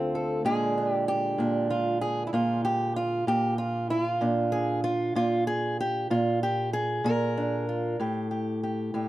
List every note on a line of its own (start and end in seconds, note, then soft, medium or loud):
0.00 0.45 D2 medium
0.00 0.45 D3 medium
0.00 0.42 C4 medium
0.00 0.47 F4 medium
0.00 0.14 A4 medium
0.15 0.42 A4 medium
0.45 1.38 A#2 medium
0.45 7.98 D3 soft
0.45 4.19 G#3 medium
0.45 0.77 D4 soft
0.45 0.91 G#4 medium
0.78 1.39 D4 soft
0.91 1.08 G4 medium
1.08 1.70 G4 medium
1.38 2.32 A#2 medium
1.38 4.18 D4 soft
1.70 2.01 F4 medium
2.01 2.26 G#4 medium
2.27 2.33 E4 medium
2.33 3.26 A#2 medium
2.33 2.64 F4 medium
2.65 2.96 G4 medium
2.96 3.28 F4 medium
3.27 4.18 A#2 medium
3.27 3.58 G4 medium
3.58 3.89 F4 medium
3.90 4.04 E4 medium
4.04 4.83 F4 medium
4.21 5.14 A#2 medium
4.21 7.35 D4 medium
4.52 4.83 G#4 medium
4.84 5.15 F4 medium
5.15 6.09 A#2 medium
5.15 5.47 F4 medium
5.47 5.79 G#4 loud
5.81 6.11 G4 medium
6.10 7.03 A#2 medium
6.10 6.42 F4 medium
6.43 6.73 G4 loud
6.73 7.67 G#4 loud
7.04 7.95 A#2 medium
7.04 7.99 A#4 loud
7.37 7.96 D4 soft
7.69 7.96 F4 soft
8.00 8.93 A2 medium
8.00 8.30 G4 soft
8.31 8.62 G4 soft
8.63 8.93 G4 medium
8.94 9.08 A2 medium
8.94 9.08 G4 soft